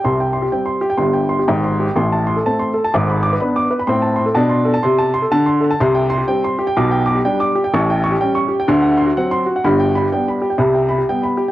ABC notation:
X:1
M:4/4
L:1/16
Q:"Swing" 1/4=125
K:Am
V:1 name="Upright piano"
c' g c' G g c' G g c' g c' G g c' G g | c' a c' A a c' A a d' b d' B b d' B b | c' a c' A a c' A a c' a c' A a c' A a | [K:G] c' g c' G g c' G g d' g d' G g d' G g |
^c' g c' G g c' G g =c' f c' F f c' F f | b g b G g b G g b g b G g b G g |]
V:2 name="Upright piano" clef=bass
[C,,C,]4 [G,C]4 [G,,,G,,]4 [_A,,,_A,,]4 | [A,,,A,,]4 [A,C]4 [^G,,,^G,,]4 [B,D]4 | [A,,C]4 [B,,D]4 C,4 D,4 | [K:G] [C,,C,]4 [G,C]4 [B,,,B,,]4 [G,D]4 |
[A,,,A,,]4 [G,^C]4 [D,,D,]4 [F,=C]4 | [G,,,G,,]4 [G,B,D]4 [C,,C,]4 [G,B,]4 |]